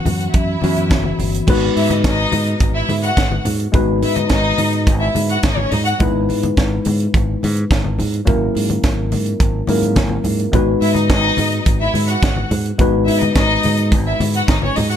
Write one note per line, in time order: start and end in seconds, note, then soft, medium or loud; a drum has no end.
0.00 0.59 E3 medium
0.00 0.60 B3 medium
0.00 0.60 C#4 medium
0.00 0.31 F#4 medium
0.00 0.61 F#4 medium
0.00 0.31 F#5 medium
0.05 0.27 F#2 medium
0.05 open hi-hat medium
0.05 muted conga soft
0.05 high conga medium
0.05 low conga medium
0.20 closed hi-hat soft
0.34 0.55 F#2 loud
0.34 1.45 E4 medium
0.34 1.46 E5 medium
0.34 kick loud
0.34 closed hi-hat medium
0.61 0.92 F#2 loud
0.61 1.48 E3 medium
0.61 1.47 B3 medium
0.61 1.48 C#4 medium
0.61 1.48 F#4 medium
0.61 open hi-hat medium
0.61 muted conga soft
0.61 high conga medium
0.76 closed hi-hat soft
0.76 high conga medium
0.90 1.11 F#1 medium
0.90 kick loud
0.90 snare loud
0.90 closed hi-hat medium
0.90 high conga medium
1.04 high conga medium
1.19 1.40 G1 medium
1.19 open hi-hat medium
1.19 low conga medium
1.34 closed hi-hat soft
1.47 1.68 G#1 loud
1.47 3.70 G#3 medium
1.47 3.70 B3 medium
1.47 3.71 D#4 medium
1.47 3.71 F#4 medium
1.47 3.71 B4 medium
1.47 kick loud
1.47 crash loud
1.47 muted conga soft
1.47 low conga medium
1.76 2.06 G#2 medium
1.76 1.88 E4 medium
1.76 1.88 E5 medium
1.76 open hi-hat medium
1.90 2.02 D#4 medium
1.90 2.02 D#5 medium
1.90 closed hi-hat soft
1.90 high conga medium
2.04 2.25 G#1 medium
2.04 2.59 D#4 loud
2.04 2.59 D#5 loud
2.04 kick loud
2.04 snare loud
2.04 closed hi-hat medium
2.04 muted conga soft
2.32 2.53 G#2 loud
2.32 open hi-hat medium
2.32 muted conga soft
2.32 high conga medium
2.47 closed hi-hat soft
2.60 2.81 G#1 medium
2.60 kick loud
2.60 closed hi-hat medium
2.60 muted conga soft
2.74 2.86 E4 loud
2.74 2.87 E5 loud
2.89 3.10 G#2 loud
2.89 open hi-hat medium
2.89 muted conga soft
2.89 high conga medium
3.03 3.43 F#4 medium
3.03 3.43 F#5 loud
3.03 closed hi-hat soft
3.17 3.38 G#1 medium
3.17 kick loud
3.17 snare loud
3.17 closed hi-hat medium
3.17 muted conga soft
3.17 high conga medium
3.31 high conga medium
3.45 3.66 G#2 loud
3.45 open hi-hat medium
3.45 muted conga soft
3.45 low conga medium
3.60 closed hi-hat soft
3.72 4.04 G#1 loud
3.72 5.96 G#3 medium
3.72 5.96 B3 medium
3.72 5.97 D#4 medium
3.72 5.97 F#4 medium
3.72 5.97 B4 medium
3.72 kick loud
3.72 closed hi-hat medium
3.72 low conga medium
4.02 4.23 G#2 loud
4.02 4.15 E4 medium
4.02 4.15 E5 medium
4.02 open hi-hat medium
4.02 muted conga soft
4.16 4.27 D#4 medium
4.16 4.27 D#5 loud
4.16 closed hi-hat medium
4.16 high conga medium
4.28 4.51 G#1 medium
4.28 4.83 D#4 loud
4.28 4.83 D#5 loud
4.28 kick loud
4.28 snare loud
4.28 closed hi-hat medium
4.28 muted conga soft
4.58 4.89 G#2 loud
4.58 open hi-hat medium
4.58 muted conga soft
4.58 high conga medium
4.73 closed hi-hat soft
4.87 5.08 G#1 loud
4.87 kick loud
4.87 closed hi-hat medium
4.87 muted conga soft
5.00 5.12 E4 medium
5.00 5.12 E5 loud
5.15 5.36 G#2 loud
5.15 open hi-hat medium
5.15 muted conga soft
5.15 high conga medium
5.29 5.41 F#4 medium
5.29 5.42 F#5 medium
5.29 closed hi-hat medium
5.43 5.64 G#1 loud
5.43 5.56 D#4 medium
5.43 5.56 D#5 loud
5.43 kick loud
5.43 snare loud
5.43 closed hi-hat medium
5.43 muted conga soft
5.43 high conga medium
5.57 5.69 C#4 loud
5.57 5.69 C#5 loud
5.57 high conga medium
5.71 5.92 G#2 loud
5.71 5.84 D#4 medium
5.71 5.83 D#5 loud
5.71 open hi-hat medium
5.71 low conga medium
5.85 5.97 F#4 medium
5.85 5.97 F#5 medium
5.85 closed hi-hat soft
5.99 6.31 G#1 loud
5.99 8.22 G#3 medium
5.99 8.23 B3 medium
5.99 8.23 D#4 medium
5.99 8.23 E4 medium
5.99 8.24 B4 medium
5.99 kick loud
5.99 closed hi-hat medium
5.99 muted conga soft
5.99 low conga medium
6.29 6.49 G#2 loud
6.29 open hi-hat medium
6.29 muted conga soft
6.43 closed hi-hat soft
6.43 high conga medium
6.57 6.78 G#1 loud
6.57 kick loud
6.57 snare loud
6.57 closed hi-hat medium
6.85 7.06 G#2 loud
6.85 open hi-hat medium
6.85 muted conga soft
6.85 high conga medium
7.00 closed hi-hat soft
7.14 7.35 G#1 loud
7.14 kick loud
7.14 closed hi-hat medium
7.14 muted conga soft
7.43 7.64 G#2 loud
7.43 open hi-hat medium
7.43 high conga medium
7.56 closed hi-hat soft
7.71 8.01 G#1 loud
7.71 kick loud
7.71 snare loud
7.71 closed hi-hat medium
7.71 muted conga soft
7.71 high conga medium
7.84 high conga medium
7.99 8.20 G#2 loud
7.99 open hi-hat medium
7.99 low conga medium
8.14 closed hi-hat soft
8.25 8.48 G#1 loud
8.25 9.65 F#3 medium
8.25 9.65 A#3 medium
8.25 9.65 C#4 medium
8.25 9.66 E4 medium
8.25 9.66 A#4 medium
8.25 kick loud
8.25 closed hi-hat medium
8.25 muted conga soft
8.25 low conga medium
8.55 8.76 G#2 medium
8.55 open hi-hat medium
8.55 muted conga soft
8.70 closed hi-hat soft
8.70 high conga medium
8.83 9.14 G#1 loud
8.83 kick loud
8.83 snare loud
8.83 closed hi-hat medium
8.83 muted conga soft
9.12 9.33 G#2 loud
9.12 open hi-hat medium
9.12 high conga medium
9.26 closed hi-hat soft
9.40 9.61 G#1 loud
9.40 kick loud
9.40 closed hi-hat medium
9.67 9.98 G#2 loud
9.67 10.53 F#3 medium
9.67 10.53 A#3 medium
9.67 10.53 C#4 medium
9.67 10.53 E4 medium
9.67 10.54 A#4 medium
9.67 open hi-hat medium
9.67 muted conga soft
9.67 high conga medium
9.82 closed hi-hat soft
9.82 high conga medium
9.96 10.17 G#1 loud
9.96 kick loud
9.96 snare loud
9.96 closed hi-hat medium
9.96 muted conga soft
9.96 high conga medium
10.09 high conga medium
10.24 10.45 G#2 medium
10.24 open hi-hat medium
10.24 muted conga soft
10.24 low conga medium
10.40 closed hi-hat soft
10.52 10.74 G#1 loud
10.52 12.74 G#3 medium
10.52 12.75 B3 medium
10.52 12.75 D#4 medium
10.52 12.75 F#4 medium
10.52 12.76 B4 medium
10.52 kick loud
10.52 closed hi-hat medium
10.52 muted conga soft
10.52 low conga medium
10.81 11.11 G#2 medium
10.81 10.93 E4 medium
10.81 10.93 E5 loud
10.81 open hi-hat medium
10.81 muted conga soft
10.94 11.06 D#4 medium
10.94 11.06 D#5 medium
10.94 closed hi-hat medium
10.94 high conga medium
11.09 11.30 G#1 medium
11.09 11.63 D#4 loud
11.09 11.63 D#5 loud
11.09 kick loud
11.09 snare loud
11.09 closed hi-hat medium
11.09 muted conga soft
11.37 11.59 G#2 loud
11.37 open hi-hat medium
11.37 muted conga soft
11.37 high conga medium
11.52 closed hi-hat soft
11.66 11.87 G#1 loud
11.66 kick loud
11.66 closed hi-hat medium
11.66 muted conga soft
11.80 11.92 E4 medium
11.80 11.92 E5 loud
11.94 12.15 G#2 loud
11.94 open hi-hat medium
11.94 muted conga soft
11.94 high conga medium
12.06 12.47 F#4 medium
12.06 12.47 F#5 loud
12.06 closed hi-hat soft
12.22 12.43 G#1 medium
12.22 kick loud
12.22 snare loud
12.22 closed hi-hat medium
12.22 high conga medium
12.37 high conga medium
12.51 12.71 G#2 loud
12.51 open hi-hat medium
12.51 low conga medium
12.66 closed hi-hat soft
12.78 13.09 G#1 loud
12.78 14.97 G#3 medium
12.78 14.97 B3 medium
12.78 14.97 D#4 medium
12.78 14.97 F#4 medium
12.78 14.97 B4 medium
12.78 kick loud
12.78 closed hi-hat medium
12.78 muted conga soft
12.78 low conga medium
13.06 13.28 G#2 loud
13.06 13.18 E4 medium
13.06 13.18 E5 medium
13.06 open hi-hat medium
13.06 muted conga soft
13.21 13.32 D#4 medium
13.21 13.33 D#5 loud
13.21 closed hi-hat soft
13.21 high conga medium
13.35 13.56 G#1 loud
13.35 13.89 D#4 loud
13.35 13.88 D#5 loud
13.35 kick loud
13.35 snare loud
13.35 closed hi-hat medium
13.35 muted conga soft
13.63 13.94 G#2 medium
13.63 open hi-hat medium
13.63 high conga medium
13.77 closed hi-hat soft
13.92 14.12 G#1 loud
13.92 kick loud
13.92 closed hi-hat medium
13.92 muted conga soft
14.06 14.18 E4 medium
14.06 14.18 E5 medium
14.20 14.40 G#2 loud
14.20 open hi-hat medium
14.20 muted conga soft
14.20 high conga medium
14.34 14.46 F#4 medium
14.34 14.46 F#5 loud
14.34 closed hi-hat soft
14.48 14.69 G#1 medium
14.48 14.60 D#4 medium
14.48 14.60 D#5 loud
14.48 kick loud
14.48 snare loud
14.48 closed hi-hat medium
14.48 high conga medium
14.62 14.74 C#4 medium
14.62 14.74 C#5 loud
14.62 high conga medium
14.76 14.97 G#2 loud
14.76 14.88 D#4 medium
14.76 14.88 D#5 loud
14.76 open hi-hat medium
14.76 muted conga soft
14.76 low conga medium
14.89 14.97 F#4 medium
14.89 14.97 F#5 medium
14.89 closed hi-hat soft